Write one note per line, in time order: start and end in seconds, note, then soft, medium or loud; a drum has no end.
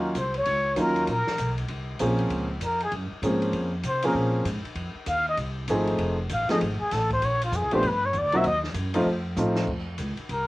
0.00 0.14 D#2 medium
0.00 0.13 F#3 medium
0.00 0.13 A#3 medium
0.00 0.13 C#4 medium
0.00 0.13 D#4 medium
0.00 0.14 F4 medium
0.15 0.45 C2 medium
0.15 0.35 C5 medium
0.15 hi-hat pedal medium
0.15 ride medium
0.34 0.82 C#5 medium
0.34 ride soft
0.46 0.76 C#2 medium
0.46 ride medium
0.76 1.07 D#2 medium
0.76 1.07 F#3 medium
0.76 1.08 A#3 medium
0.76 1.08 C#4 medium
0.76 1.08 D#4 medium
0.76 1.08 F4 medium
0.76 hi-hat pedal medium
0.76 ride medium
0.80 1.09 A#4 medium
0.96 ride soft
1.07 1.26 A#1 medium
1.07 ride medium
1.11 1.56 A#4 medium
1.27 muted upright bass stroke soft
1.27 snare medium
1.38 1.68 B1 medium
1.38 hi-hat pedal medium
1.38 ride medium
1.58 ride soft
1.68 1.99 C2 medium
1.68 ride medium
1.99 2.29 A#1 medium
1.99 2.46 F3 medium
1.99 2.46 A#3 medium
1.99 2.46 C4 medium
1.99 2.47 C#4 medium
1.99 2.47 G#4 medium
1.99 hi-hat pedal medium
1.99 ride medium
2.18 ride soft
2.30 2.60 C#2 medium
2.30 ride medium
2.60 2.91 F2 medium
2.60 hi-hat pedal medium
2.60 ride medium
2.65 2.81 A#4 medium
2.80 2.92 G#4 medium
2.80 ride soft
2.91 3.10 F#2 medium
2.91 ride medium
3.11 muted upright bass stroke soft
3.22 3.52 G#2 medium
3.22 3.69 F3 medium
3.22 3.69 A#3 medium
3.22 3.70 C4 medium
3.22 3.70 C#4 medium
3.22 3.70 G#4 medium
3.22 hi-hat pedal medium
3.22 ride medium
3.42 ride soft
3.53 3.83 F2 medium
3.53 ride medium
3.83 4.14 C3 medium
3.83 hi-hat pedal medium
3.83 ride medium
3.88 4.04 C5 medium
4.02 4.43 F3 medium
4.02 4.43 A#3 medium
4.02 4.44 C4 medium
4.02 4.44 C#4 medium
4.02 4.44 G#4 medium
4.02 4.15 A#4 medium
4.02 ride medium
4.14 4.44 A#2 medium
4.45 4.63 G#2 medium
4.45 hi-hat pedal medium
4.45 ride medium
4.64 muted upright bass stroke soft
4.64 ride soft
4.75 4.94 F2 medium
4.75 ride medium
4.95 muted upright bass stroke soft
5.06 5.37 D#2 medium
5.06 5.26 F5 medium
5.06 hi-hat pedal medium
5.06 ride medium
5.29 5.38 D#5 medium
5.37 5.67 C2 medium
5.37 ride medium
5.68 5.98 G#1 medium
5.68 6.15 F3 medium
5.68 6.15 A3 medium
5.68 6.15 C4 medium
5.68 6.16 D#4 medium
5.68 6.16 G#4 medium
5.68 hi-hat pedal medium
5.68 ride medium
5.87 ride soft
5.98 6.29 F1 medium
5.98 ride medium
6.29 6.48 A1 medium
6.29 6.50 F5 medium
6.29 hi-hat pedal medium
6.29 ride medium
6.49 6.59 F3 medium
6.49 6.60 A3 medium
6.49 6.60 C4 medium
6.49 6.60 D#4 medium
6.49 6.60 G#4 medium
6.49 6.57 D#5 medium
6.49 muted upright bass stroke soft
6.49 snare medium
6.49 ride soft
6.61 6.79 G#1 medium
6.61 ride medium
6.81 6.94 G#4 medium
6.81 muted upright bass stroke soft
6.91 7.22 A1 medium
6.91 7.12 A4 medium
6.91 snare soft
6.91 hi-hat pedal medium
6.91 ride medium
7.10 7.26 C5 loud
7.10 kick medium
7.10 ride soft
7.22 7.51 A#1 medium
7.22 7.43 C#5 loud
7.22 ride medium
7.41 7.57 F4 medium
7.41 ride medium
7.52 7.63 F2 loud
7.52 hi-hat pedal medium
7.56 7.74 G#4 medium
7.63 7.72 C#2 medium
7.71 7.82 A#1 medium
7.71 7.82 F3 medium
7.71 7.82 A3 medium
7.71 7.83 B3 medium
7.71 7.83 D4 medium
7.71 7.83 G4 medium
7.71 7.88 C5 loud
7.71 ride soft
7.83 8.13 G2 medium
7.83 ride medium
7.87 8.07 B4 medium
8.06 8.20 C#5 medium
8.13 8.23 E2 medium
8.13 hi-hat pedal medium
8.13 ride medium
8.18 8.38 D5 medium
8.23 8.33 D2 medium
8.32 8.43 B1 medium
8.32 8.44 F#3 medium
8.32 8.44 A#3 medium
8.32 8.44 C4 medium
8.32 8.44 D#4 medium
8.32 8.44 F#4 medium
8.32 ride soft
8.37 8.46 E5 loud
8.44 8.73 D#2 medium
8.44 8.58 D#5 loud
8.44 ride medium
8.64 snare soft
8.74 9.05 F#2 medium
8.74 hi-hat pedal medium
8.74 ride medium
8.94 9.05 F3 medium
8.94 9.05 A3 medium
8.94 9.05 C4 medium
8.94 9.05 D#4 medium
8.94 9.05 F4 medium
8.94 ride medium
9.05 9.36 F2 medium
9.36 9.67 A2 medium
9.36 9.67 F3 medium
9.36 9.68 A3 medium
9.36 9.68 C4 medium
9.36 9.68 D#4 medium
9.36 9.68 F4 medium
9.36 hi-hat pedal medium
9.55 snare medium
9.67 9.97 F2 medium
9.67 kick medium
9.67 crash medium
9.98 10.17 C#2 medium
9.98 hi-hat pedal medium
9.98 ride medium
10.17 muted upright bass stroke soft
10.17 ride soft
10.29 10.47 C2 medium
10.29 10.47 A#4 medium
10.29 ride medium